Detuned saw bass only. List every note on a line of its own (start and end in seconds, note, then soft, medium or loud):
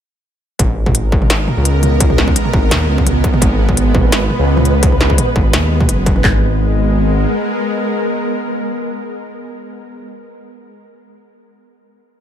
0.59 1.46 G#1 medium
1.57 2.35 C#2 loud
2.53 2.72 G#1 medium
2.71 2.87 D#2 medium
2.89 3.23 C#2 medium
3.42 4.29 G#1 loud
4.39 5.17 C#2 loud
5.36 5.55 G#1 medium
5.53 5.90 D#2 loud
5.88 6.23 F#1 medium
6.24 7.26 G#1 loud